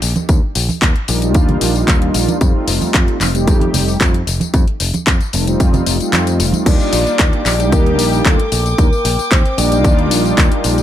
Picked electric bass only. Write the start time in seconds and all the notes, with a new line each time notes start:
0.02 A#1
0.29 D#2
0.55 A#1
0.69 muted picked electric bass stroke
0.82 D#2
1.08 A#1
1.35 D#2
1.61 A#1
1.88 D#2
2.14 A#1
2.41 F2
2.67 F1
2.82 muted picked electric bass stroke
2.94 F2
3.21 F1
3.47 F2
3.74 F1
4.00 F2
4.27 F1
4.54 F2
4.80 F1
4.94 muted picked electric bass stroke
5.07 F2
5.34 F1
5.60 F2
5.87 F1
6.01 muted picked electric bass stroke
6.13 F2
6.39 F1
6.66 D#2
6.93 A#1
7.07 muted picked electric bass stroke
7.19 D#2
7.45 A#1
7.72 D#2
7.99 A#1
8.26 D#2
8.52 A#1
8.78 D#2
9.05 A#1
9.19 muted picked electric bass stroke
9.31 D#2
9.58 A#1
9.84 D#2
10.11 A#1
10.38 D#2
10.64 A#1